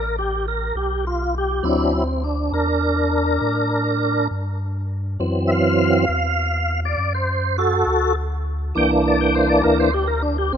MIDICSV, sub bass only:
0, 0, Header, 1, 2, 480
1, 0, Start_track
1, 0, Tempo, 593178
1, 1327, Time_signature, 12, 3, 24, 8
1, 8554, End_track
2, 0, Start_track
2, 0, Title_t, "Sub bass"
2, 0, Program_c, 0, 38
2, 0, Note_on_c, 0, 33, 91
2, 584, Note_off_c, 0, 33, 0
2, 606, Note_on_c, 0, 35, 84
2, 1305, Note_off_c, 0, 35, 0
2, 1326, Note_on_c, 0, 38, 82
2, 2025, Note_off_c, 0, 38, 0
2, 2040, Note_on_c, 0, 40, 98
2, 2742, Note_off_c, 0, 40, 0
2, 2764, Note_on_c, 0, 45, 92
2, 3464, Note_off_c, 0, 45, 0
2, 3488, Note_on_c, 0, 43, 84
2, 4186, Note_off_c, 0, 43, 0
2, 4205, Note_on_c, 0, 42, 84
2, 4904, Note_off_c, 0, 42, 0
2, 4927, Note_on_c, 0, 40, 92
2, 5625, Note_off_c, 0, 40, 0
2, 5645, Note_on_c, 0, 42, 89
2, 6344, Note_off_c, 0, 42, 0
2, 6366, Note_on_c, 0, 38, 92
2, 7064, Note_off_c, 0, 38, 0
2, 7093, Note_on_c, 0, 36, 90
2, 7788, Note_off_c, 0, 36, 0
2, 7812, Note_on_c, 0, 38, 99
2, 8507, Note_off_c, 0, 38, 0
2, 8523, Note_on_c, 0, 34, 92
2, 8554, Note_off_c, 0, 34, 0
2, 8554, End_track
0, 0, End_of_file